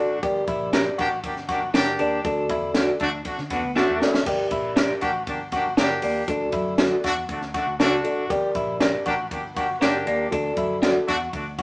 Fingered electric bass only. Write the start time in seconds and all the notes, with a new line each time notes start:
Already playing: G#1
0.23 G1
0.48 A#1
0.99 A1
1.24 G1
1.62 G1
1.75 F#1
2.00 D#2
2.25 D2
2.50 E2
3.01 D2
3.39 D3
3.51 E2
3.64 D2
3.89 E2
4.01 G#1
4.27 G1
4.51 A#1
5.03 A1
5.27 G1
5.65 G1
5.78 F#1
6.03 D#2
6.28 D2
6.53 F#2
7.05 E2
7.29 D2
7.67 D2
7.79 C#2
8.04 G#1
8.30 G1
8.55 A#1
9.06 A1
9.31 G1
9.69 G1
9.82 F#1
10.07 D#2
10.32 D2
10.57 F#2
11.09 E2
11.33 D2